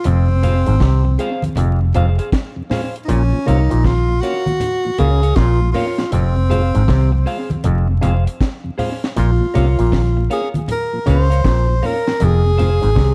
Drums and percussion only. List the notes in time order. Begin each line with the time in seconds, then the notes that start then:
0.04 closed hi-hat, low conga
0.43 closed hi-hat, low conga
0.66 closed hi-hat
0.80 kick, snare, closed hi-hat, high conga
1.19 closed hi-hat
1.42 closed hi-hat, high conga
1.55 closed hi-hat, low conga
1.94 closed hi-hat, low conga
2.19 closed hi-hat
2.32 kick, snare, closed hi-hat
2.71 snare, open hi-hat, low conga
2.96 closed hi-hat
3.09 closed hi-hat, low conga
3.47 closed hi-hat, low conga
3.71 closed hi-hat
3.84 kick, snare, closed hi-hat, high conga
4.23 closed hi-hat
4.46 closed hi-hat, high conga
4.60 closed hi-hat, low conga
4.98 closed hi-hat, low conga
5.23 closed hi-hat
5.36 kick, snare, closed hi-hat
5.74 open hi-hat, low conga
5.98 snare, closed hi-hat
6.12 closed hi-hat, low conga
6.51 closed hi-hat, low conga
6.75 closed hi-hat
6.88 kick, snare, closed hi-hat, high conga
7.27 open hi-hat
7.50 closed hi-hat, high conga
7.64 closed hi-hat, low conga
8.03 closed hi-hat, low conga
8.27 closed hi-hat
8.41 kick, snare, closed hi-hat
8.79 open hi-hat, low conga
9.04 snare, closed hi-hat
9.17 closed hi-hat, low conga
9.55 closed hi-hat, low conga
9.79 closed hi-hat
9.92 kick, snare, closed hi-hat, high conga
10.31 closed hi-hat
10.54 closed hi-hat, high conga
10.68 closed hi-hat, low conga
11.07 closed hi-hat, low conga
11.32 closed hi-hat
11.45 kick, snare, closed hi-hat
11.83 open hi-hat, low conga
12.08 snare, closed hi-hat
12.20 closed hi-hat, low conga
12.59 closed hi-hat, low conga
12.83 closed hi-hat
12.96 kick, snare, closed hi-hat, high conga